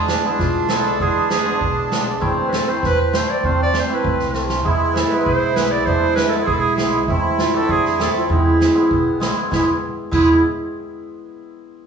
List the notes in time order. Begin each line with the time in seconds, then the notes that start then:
Already playing: E2 G#3 D4
0.08 snare
0.24 G#3 B3 E4
0.39 B1 F4, kick, snare
0.69 G#3 B3 E4 A4, snare
1.00 E2 G#3 B3 E4 G#4, kick
1.30 G#4, snare
1.46 G#3 B3 D4
1.61 B1, kick
1.91 G#3 B3 D4, snare
2.20 E2 A3 C4 E4, kick
2.48 B4
2.53 A4, snare
2.67 A3 C4 E4 C5
2.83 E2 B4, kick, snare
3.01 B4
3.13 A3 C4 E4 C5, snare
3.30 D5
3.43 E2 A3 C4 F4 C5, kick
3.63 D5
3.74 snare
3.79 C5
3.88 A3 C4 E4
3.94 B4
4.04 C2, kick
4.09 B4
4.19 snare
4.34 A3 C4 F4, snare
4.49 snare
4.64 E2 G#3 B3 E4, kick
4.93 A4 B4, snare
5.10 G#3 B3 E4 B4
5.25 B1 C5, kick
5.56 G#3 B3 E4 B4, snare
5.71 D5
5.86 E2 G#3 B3 D4 C5, kick
6.16 B4, snare
6.30 A4
6.34 G#3 B3 E4
6.46 B1 G#4, kick
6.53 A4
6.59 G#4
6.76 G#3 G#4, snare
6.80 B3 E4
7.07 E2 A3 C4 E4, kick
7.38 F4, snare
7.54 A3 C4 D4 A4
7.69 E2 G#4, kick
7.85 G#4, snare
7.99 A3 C4 E4 A4, snare
8.05 G#4 A4
8.18 F4
8.29 E2 G#3 B3 C4 E4, kick
8.61 snare
8.74 G#3 B3 E4
8.89 B1 B3, kick
9.20 G#3 B3 E4, snare
9.51 E2 G#3 B3 E4, kick, snare
10.11 E2 G#3 B3 E4, kick, crash